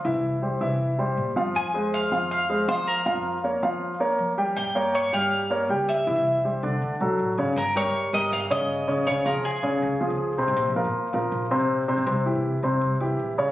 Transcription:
0.05 0.13 C2 loud
0.05 0.35 E3 medium
0.05 0.36 E4 medium
0.05 0.36 E5 medium
0.14 0.59 C2 medium
0.42 0.58 G3 medium
0.42 0.58 G4 medium
0.42 0.58 C5 medium
0.61 1.15 C2 medium
0.61 0.92 E3 medium
0.61 0.92 E4 medium
0.61 0.92 E5 medium
0.98 1.29 G3 medium
0.98 1.30 G4 medium
0.98 1.30 C5 medium
1.17 1.34 A#2 medium
1.36 1.54 G2 medium
1.36 1.67 F3 medium
1.36 1.67 F4 medium
1.36 1.68 F5 medium
1.55 1.64 F2 loud
1.55 1.91 G#5 loud
1.65 2.10 F2 medium
1.74 2.05 G#3 medium
1.74 2.05 G#4 medium
1.74 2.05 C5 medium
1.94 2.28 F5 medium
2.12 2.66 F2 medium
2.12 2.42 F3 medium
2.12 2.43 F4 medium
2.12 2.43 F5 medium
2.31 2.70 F5 medium
2.49 2.65 G#3 medium
2.49 2.65 G#4 medium
2.49 2.65 C5 medium
2.68 3.04 F3 medium
2.68 2.99 F3 medium
2.68 2.99 F4 medium
2.68 2.88 C5 medium
2.68 2.99 F5 medium
2.88 3.96 A#4 medium
3.06 3.15 F2 loud
3.06 3.37 F3 medium
3.06 3.37 F4 medium
3.06 3.37 F5 medium
3.16 3.60 F2 medium
3.44 3.59 A#3 medium
3.44 3.59 A#4 medium
3.44 3.60 C#5 medium
3.62 4.16 F2 medium
3.62 3.93 F3 medium
3.62 3.93 F4 medium
3.62 3.94 F5 medium
4.00 4.31 A#3 medium
4.00 4.31 A#4 medium
4.00 4.31 C#5 medium
4.19 4.54 F3 medium
4.38 4.68 G3 medium
4.38 4.69 G4 medium
4.38 4.69 G5 medium
4.56 4.65 G2 loud
4.56 4.91 G5 loud
4.66 5.10 G2 medium
4.75 5.06 A#3 medium
4.75 5.06 A#4 medium
4.75 5.06 C#5 medium
4.95 5.14 C#5 medium
5.12 5.66 G2 medium
5.12 5.44 G3 medium
5.12 5.44 G4 medium
5.12 5.84 F5 loud
5.12 5.44 G5 medium
5.50 5.66 A#3 medium
5.50 5.66 A#4 medium
5.50 5.66 C#5 medium
5.69 6.05 C#2 medium
5.69 6.00 G3 medium
5.69 6.00 G4 medium
5.69 6.01 G5 medium
5.89 7.35 E5 medium
6.07 6.15 C2 loud
6.07 6.37 E3 medium
6.07 6.38 E4 medium
6.07 6.38 E5 medium
6.16 6.61 C2 medium
6.45 6.60 G3 medium
6.45 6.60 G4 medium
6.45 6.60 C5 medium
6.63 6.81 C2 medium
6.63 6.94 D3 medium
6.63 6.94 D4 medium
6.63 6.94 D5 medium
6.82 7.00 D2 medium
7.00 7.17 B1 medium
7.00 7.31 F#3 medium
7.00 7.32 F#4 medium
7.00 7.32 A4 medium
7.19 7.36 A1 medium
7.38 7.55 G#1 medium
7.38 7.54 C#3 medium
7.38 7.54 C#4 medium
7.38 7.54 C#5 medium
7.56 7.87 G1 loud
7.56 7.76 A#4 medium
7.76 8.06 G3 medium
7.76 8.07 G4 medium
7.76 8.07 A#4 medium
7.76 8.11 C#5 medium
7.85 8.03 G2 medium
8.13 8.31 G1 medium
8.13 8.44 G3 medium
8.13 8.44 G4 medium
8.13 8.44 A#4 medium
8.13 8.32 D#5 medium
8.32 8.59 G1 medium
8.32 8.38 F5 medium
8.50 8.81 C#3 medium
8.50 8.81 C#4 medium
8.50 8.82 C#5 medium
8.50 9.09 D#5 loud
8.60 8.96 G1 medium
8.88 9.03 C#3 medium
8.88 9.03 C#4 medium
8.88 9.04 C#5 medium
8.98 9.06 G1 medium
9.07 9.36 C#2 loud
9.07 9.22 C#3 medium
9.07 9.22 C#4 medium
9.07 9.24 C#5 medium
9.07 9.23 C#5 medium
9.25 9.56 F3 medium
9.25 9.56 F4 medium
9.25 9.57 G#4 medium
9.25 9.43 A#4 medium
9.34 9.53 C#3 medium
9.45 10.34 G#4 medium
9.63 9.81 C#2 medium
9.63 9.94 C#3 medium
9.63 9.94 C#4 medium
9.63 9.94 C#5 medium
9.82 10.09 C#2 loud
10.01 10.31 F3 medium
10.01 10.32 F4 medium
10.01 10.32 G#4 medium
10.10 10.46 C#2 medium
10.38 10.69 C3 medium
10.38 10.69 C4 medium
10.38 10.69 C5 medium
10.48 10.56 C2 medium
10.56 10.86 A#1 loud
10.76 11.07 F3 medium
10.76 11.07 F4 medium
10.76 11.07 A#4 medium
10.85 11.03 A#2 medium
11.13 11.31 A#1 loud
11.13 11.44 F3 medium
11.13 11.44 F4 medium
11.13 11.45 A#4 medium
11.32 11.59 A#1 loud
11.51 11.82 C3 medium
11.51 11.82 C4 medium
11.51 11.82 C5 medium
11.60 11.96 A#1 medium
11.88 12.03 C3 medium
11.88 12.04 C4 medium
11.88 12.04 C5 medium
11.97 12.06 A#1 medium
12.06 12.36 C2 loud
12.06 12.22 C3 medium
12.06 12.22 C4 medium
12.06 12.23 C5 medium
12.26 12.56 E3 medium
12.26 12.57 E4 medium
12.26 12.57 G4 medium
12.35 12.53 C3 medium
12.63 12.81 C2 medium
12.63 12.94 C3 medium
12.63 12.94 C4 medium
12.63 12.94 C5 medium
12.81 13.00 C2 medium
13.00 13.17 C2 medium
13.00 13.31 E3 medium
13.00 13.31 E4 medium
13.00 13.32 G4 medium
13.19 13.36 A#1 medium
13.38 13.52 G1 medium
13.38 13.52 C#3 medium
13.38 13.52 C#4 medium
13.38 13.52 C#5 medium

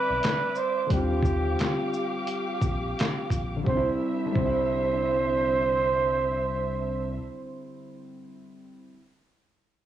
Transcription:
0.00 0.85 D3 medium
0.00 0.86 G3 medium
0.00 0.88 C4 medium
0.00 0.93 E4 medium
0.00 0.58 B4 loud
0.00 0.88 D5 medium
0.00 0.88 E5 medium
0.00 0.88 D6 medium
0.09 0.21 B1 loud
0.23 snare loud
0.23 clap loud
0.23 closed hi-hat medium
0.55 0.91 C5 loud
0.55 shaker medium
0.87 1.56 D#2 medium
0.87 3.56 D3 medium
0.87 3.62 G3 medium
0.87 kick medium
0.87 closed hi-hat medium
0.91 3.64 C4 medium
0.91 3.64 G4 medium
0.91 2.25 G4 medium
0.91 3.64 F5 medium
0.91 3.64 D6 medium
0.96 3.65 F4 medium
1.23 kick loud
1.23 shaker soft
1.59 snare medium
1.59 clap medium
1.59 closed hi-hat medium
1.93 shaker medium
2.27 closed hi-hat medium
2.62 2.95 A#1 medium
2.62 kick loud
2.62 shaker medium
2.99 snare loud
2.99 clap loud
2.99 closed hi-hat medium
3.30 3.64 A#1 medium
3.30 kick medium
3.30 closed hi-hat soft
3.30 shaker medium
3.57 3.84 D3 medium
3.64 3.90 C2 medium
3.64 3.88 G3 medium
3.64 7.18 D4 medium
3.64 3.90 C5 medium
3.64 7.19 C5 medium
3.64 7.19 E5 medium
3.64 kick medium
3.70 3.91 C4 medium
3.77 3.95 E4 medium
4.26 7.84 D3 medium
4.33 7.19 C2 loud
4.33 7.87 G3 medium
4.33 7.18 C5 loud
4.33 kick loud
4.39 7.90 C4 medium
4.45 7.93 E4 medium

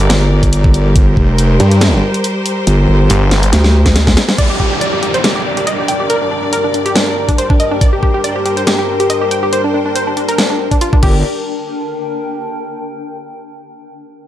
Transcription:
0.00 4.34 G3 medium
0.00 4.34 G4 medium
0.00 4.34 A#4 medium
0.00 0.92 D5 medium
0.00 closed hi-hat medium
0.10 0.94 G1 loud
0.10 snare loud
0.10 closed hi-hat medium
0.43 kick medium
0.43 closed hi-hat soft
0.53 closed hi-hat medium
0.64 kick loud
0.74 open hi-hat medium
0.96 1.15 G1 medium
0.96 4.35 C5 medium
0.96 kick loud
0.96 closed hi-hat medium
1.17 1.58 F1 medium
1.17 kick medium
1.38 closed hi-hat medium
1.60 2.01 G2 loud
1.60 closed hi-hat medium
1.71 closed hi-hat medium
1.81 snare loud
1.81 closed hi-hat medium
2.14 closed hi-hat medium
2.24 closed hi-hat medium
2.46 open hi-hat loud
2.67 2.87 G1 loud
2.67 closed hi-hat medium
2.88 3.08 G1 loud
3.10 3.51 G1 loud
3.10 closed hi-hat medium
3.31 snare medium
3.31 closed hi-hat medium
3.43 closed hi-hat medium
3.53 4.15 D2 loud
3.53 snare medium
3.53 closed hi-hat medium
3.64 snare medium
3.86 kick medium
3.86 snare medium
3.86 closed hi-hat medium
3.96 snare medium
3.96 closed hi-hat medium
4.07 kick loud
4.07 snare medium
4.17 snare loud
4.17 open hi-hat loud
4.29 snare medium
4.38 10.99 G2 medium
4.38 10.99 G3 medium
4.38 11.02 D4 medium
4.38 10.99 A#4 medium
4.38 4.46 D5 medium
4.38 7.78 D5 medium
4.38 kick loud
4.38 closed hi-hat medium
4.38 crash medium
4.38 downlifter medium
4.50 4.57 G4 medium
4.60 4.67 G4 medium
4.60 kick medium
4.64 11.03 A#4 medium
4.71 4.78 G4 medium
4.81 4.89 D5 medium
4.81 closed hi-hat medium
4.93 4.99 G4 medium
5.03 5.10 G4 medium
5.03 closed hi-hat medium
5.14 5.21 C5 medium
5.14 closed hi-hat medium
5.24 5.32 G4 medium
5.24 snare loud
5.24 closed hi-hat medium
5.35 5.42 G4 medium
5.35 11.03 G5 medium
5.57 5.64 G4 medium
5.57 closed hi-hat medium
5.67 5.75 D#5 medium
5.67 closed hi-hat medium
5.78 5.85 G4 medium
5.88 5.96 G5 medium
5.88 open hi-hat loud
6.00 6.07 G4 medium
6.10 6.18 A#4 loud
6.10 closed hi-hat medium
6.21 6.28 D4 medium
6.31 6.39 D4 medium
6.43 6.49 D4 medium
6.53 6.60 A#4 medium
6.53 closed hi-hat medium
6.64 6.71 D4 medium
6.74 6.82 D4 medium
6.74 closed hi-hat medium
6.86 6.92 G4 medium
6.86 closed hi-hat medium
6.95 7.03 D4 medium
6.95 snare loud
6.95 closed hi-hat medium
7.07 7.14 D4 medium
7.29 7.35 D4 medium
7.29 kick medium
7.29 closed hi-hat medium
7.38 7.46 C5 medium
7.38 closed hi-hat medium
7.50 7.57 D4 medium
7.50 kick loud
7.60 7.67 D#5 medium
7.60 open hi-hat loud
7.71 7.78 D4 medium
7.81 10.99 C5 medium
7.81 7.89 D5 loud
7.81 kick loud
7.81 closed hi-hat medium
7.93 7.99 G4 medium
8.03 8.10 G4 medium
8.03 kick medium
8.14 8.21 G4 medium
8.24 8.32 D5 loud
8.24 closed hi-hat medium
8.36 8.42 G4 medium
8.46 8.53 G4 medium
8.46 closed hi-hat medium
8.57 8.64 C5 medium
8.57 closed hi-hat medium
8.67 8.75 G4 medium
8.67 snare loud
8.67 closed hi-hat medium
8.78 8.85 G4 medium
9.00 9.06 G4 medium
9.00 closed hi-hat medium
9.10 9.18 D#5 medium
9.10 closed hi-hat medium
9.21 9.28 G4 medium
9.31 9.39 G5 medium
9.31 open hi-hat medium
9.43 9.49 G4 medium
9.53 9.60 C5 medium
9.53 closed hi-hat medium
9.64 9.71 D4 medium
9.74 9.82 D4 medium
9.86 9.92 D4 medium
9.95 10.03 C5 medium
9.95 closed hi-hat medium
10.07 10.14 D4 medium
10.17 10.25 D4 medium
10.17 open hi-hat medium
10.29 10.35 A#4 medium
10.29 closed hi-hat medium
10.38 10.46 D4 medium
10.38 snare loud
10.38 closed hi-hat medium
10.50 10.56 D4 medium
10.71 10.78 D4 medium
10.71 kick medium
10.71 closed hi-hat medium
10.81 10.89 F4 medium
10.81 closed hi-hat medium
10.93 10.99 D4 medium
10.93 kick loud
11.03 11.23 G1 loud
11.03 11.23 G3 medium
11.03 12.70 D4 medium
11.03 11.23 G4 medium
11.03 11.19 G4 medium
11.03 11.23 A#4 medium
11.03 11.23 D5 medium
11.03 kick loud
11.03 crash medium
11.10 12.70 A#4 medium
11.38 12.92 G5 medium

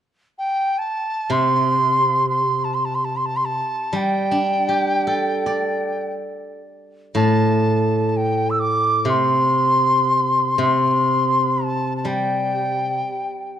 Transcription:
0.38 0.80 G5 medium
0.78 1.33 A5 medium
1.30 3.60 C3 soft
1.30 2.28 C6 medium
2.29 2.66 C6 medium
2.64 2.76 A5 medium
2.74 2.86 C6 medium
2.85 2.96 A5 medium
2.95 3.06 C6 medium
3.04 3.18 A5 medium
3.16 3.27 C6 soft
3.25 3.38 A5 medium
3.36 3.46 C6 medium
3.45 3.97 A5 medium
3.93 6.20 G3 soft
3.93 6.12 G5 medium
4.31 5.83 D4 soft
4.69 6.21 G4 soft
5.07 6.59 A4 soft
5.46 6.97 D5 soft
7.15 9.07 A2 soft
7.15 8.09 A5 medium
8.09 8.18 A5 soft
8.16 8.52 G5 medium
8.50 8.61 E6 medium
8.60 9.11 D6 medium
9.05 10.57 C3 soft
9.10 10.60 C6 medium
10.58 12.99 C3 soft
10.58 11.65 C6 medium
11.63 11.96 A5 medium
11.97 12.09 A5 soft
12.05 13.60 G3 soft
12.05 13.60 G5 medium

